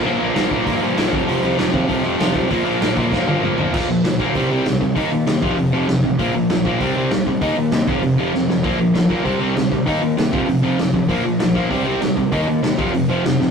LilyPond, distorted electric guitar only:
\new Staff \with { instrumentName = "Distorted electric guitar" } { \clef bass \time 4/4 \key bes \major \tempo 4 = 195 <bes, f bes>8 <bes, f bes>8 <bes, f bes>8 <bes, f bes>8 <bes, f bes>8 <bes, f bes>8 <bes, f bes>8 <f, c f>8 | <f, c f>8 <f, c f>8 <f, c f>8 <f, c f>8 <f, c f>8 <f, c f>8 <f, c f>8 <f, c f>8 | <bes, f bes>8 <bes, f bes>8 <bes, f bes>8 <bes, f bes>8 <bes, f bes>8 <bes, f bes>8 <bes, f bes>8 <bes, f bes>8 | <bes, f bes>8 <bes, f>8 <bes, f>8 <bes, f bes>8 <c g c'>8 <c g c'>8 <c g>8 <c g>8 |
<ees bes ees'>8 <ees bes>8 <ees bes>8 <f, c f>8 <f, c>8 <f, c f>8 <f, c>8 <f, c>8 | <bes, f bes>8 <bes, f>8 <bes, f>8 <bes, f bes>8 <c g c'>8 <c g c'>8 <c g>8 <c g>8 | <ees bes ees'>8 <ees bes>8 <ees bes>8 <f, c f>8 <f, c>8 <f, c f>8 <f, c>8 <f, c>8 | <bes, f bes>8 <bes, f>8 <bes, f>8 <bes, f bes>8 <c g c'>8 <c g c'>8 <c g>8 <c g>8 |
<ees bes ees'>8 <ees bes>8 <ees bes>8 <f, c f>8 <f, c>8 <f, c f>8 <f, c>8 <f, c>8 | <bes, f bes>8 <bes, f>8 <bes, f>8 <bes, f bes>8 <c g c'>8 <c g c'>8 <c g>8 <c g>8 | <ees bes ees'>8 <ees bes>8 <ees bes>8 <f, c f>8 <f, c>8 <f, c f>8 <f, c>8 <f, c>8 | }